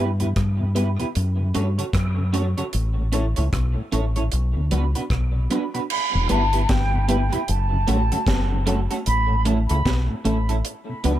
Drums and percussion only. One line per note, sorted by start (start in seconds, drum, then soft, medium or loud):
0.20 closed hi-hat soft
0.36 kick loud
0.36 cross-stick loud
0.36 closed hi-hat medium
0.76 closed hi-hat medium
1.00 closed hi-hat soft
1.15 closed hi-hat medium
1.55 closed hi-hat medium
1.79 closed hi-hat soft
1.93 kick loud
1.93 cross-stick loud
1.93 closed hi-hat medium
2.34 closed hi-hat medium
2.58 closed hi-hat soft
2.73 closed hi-hat medium
3.13 closed hi-hat medium
3.36 closed hi-hat medium
3.53 kick loud
3.53 cross-stick loud
3.53 closed hi-hat medium
3.92 closed hi-hat medium
4.16 closed hi-hat soft
4.32 closed hi-hat medium
4.71 closed hi-hat medium
4.95 closed hi-hat medium
5.10 kick loud
5.10 cross-stick loud
5.10 closed hi-hat medium
5.51 closed hi-hat medium
5.75 closed hi-hat soft
5.90 crash medium
6.29 closed hi-hat medium
6.53 closed hi-hat medium
6.69 kick loud
6.69 snare loud
6.69 closed hi-hat medium
7.09 closed hi-hat medium
7.33 closed hi-hat soft
7.48 closed hi-hat medium
7.88 closed hi-hat medium
8.12 closed hi-hat medium
8.27 kick loud
8.27 snare loud
8.27 closed hi-hat medium
8.67 closed hi-hat medium
8.91 closed hi-hat soft
9.06 closed hi-hat medium
9.45 closed hi-hat medium
9.69 closed hi-hat medium
9.86 kick loud
9.86 snare loud
9.86 closed hi-hat medium
10.25 closed hi-hat medium
10.49 closed hi-hat soft
10.65 closed hi-hat loud
11.04 closed hi-hat medium